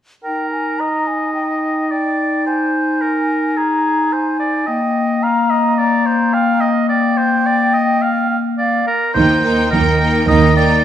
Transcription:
0.24 clarinet D#4, oboe A#4, flute G5
0.51 flute G#5
0.79 oboe D#5, flute A#5
1.07 flute G#5
1.34 flute G5
1.91 oboe D5, flute G5
2.46 oboe C5, flute G#5
3.01 oboe A#4
3.57 oboe G#4, flute A#5
4.13 oboe C5, flute G#5
4.40 oboe D5
4.67 clarinet A#3, oboe D#5, flute G5
5.23 oboe F5, flute A#5
5.50 oboe D#5
5.78 oboe D5, flute A#5
6.06 oboe C5
6.34 oboe F5, flute G5
6.61 oboe D#5
6.89 oboe D5, flute G5
7.17 oboe C5
7.46 oboe D5
7.74 oboe D#5
8.02 oboe F5
8.58 oboe D5, flute F5
8.87 oboe A#4
9.14 double bass section D#2, cello section D#3, viola section A#3, violin section D#4 G5, oboe C5
9.43 viola section A#3, violin section D#4 G5
9.71 double bass section D#2, cello section D#3, viola section A#3, violin section D#4 G5, oboe A#4
10.00 viola section A#3, violin section D#4 G5
10.28 double bass section D#2, cello section D#3, viola section A#3, violin section D#4 G5, oboe D#5
10.56 viola section A#3, violin section D#4 G5, oboe D5

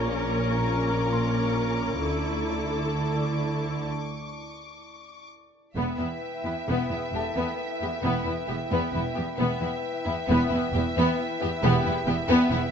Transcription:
Already playing: double bass section A#1, cello section A#2, glass harmonica C#4 F4 A#5, viola section C#4 A#4, violin section C#6 D6
1.12 grand piano C6
2.02 double bass section D2, cello section D3, glass harmonica E4 D5 A5, viola section E4 A4
2.50 grand piano D5
5.76 double bass section E1, cello section E2, viola section B3, violin section B3 E5, glass harmonica E4 B4 G5
5.99 cello section E2, viola section B3, violin section E4
6.45 cello section E2, viola section B3, violin section E4
6.68 double bass section E1, cello section E2, viola section B3, violin section B3
6.90 cello section E2, viola section B3, violin section E4
7.13 double bass section E1, cello section E2, viola section B3, violin section G4, grand piano A4 A5
7.36 cello section E2, violin section B3, viola section B3
7.81 cello section E2, viola section B3, violin section G4
8.02 double bass section E1, cello section E2, violin section B3, viola section B3
8.24 cello section E2, viola section B3, violin section E4
8.47 double bass section E1, cello section E2, viola section B3, violin section G4
8.71 cello section E2, viola section B3, violin section B3
8.93 double bass section E1, cello section E2, viola section B3, violin section E4
9.15 cello section E2, viola section B3, violin section G4
9.38 double bass section E1, cello section E2, violin section B3 E5, viola section B3, glass harmonica E4 B4 G5
9.60 cello section E2, viola section B3, violin section E4
10.05 cello section E2, viola section B3, violin section E4
10.28 double bass section E1, cello section E2, violin section B3, viola section B3
10.50 cello section E2, viola section B3, violin section E4
10.73 double bass section E1, cello section E2, viola section B3, violin section G4
10.97 cello section E2, violin section B3, viola section B3
11.41 cello section E2, viola section B3, violin section G4
11.63 double bass section E1, cello section E2, violin section B3, viola section B3, grand piano G4 G5
11.85 cello section E2, viola section B3, violin section E4
12.06 double bass section E1, cello section E2, viola section B3, violin section G4
12.28 cello section E2, viola section B3, violin section B3
12.51 double bass section E1, cello section E2, viola section B3, violin section E4

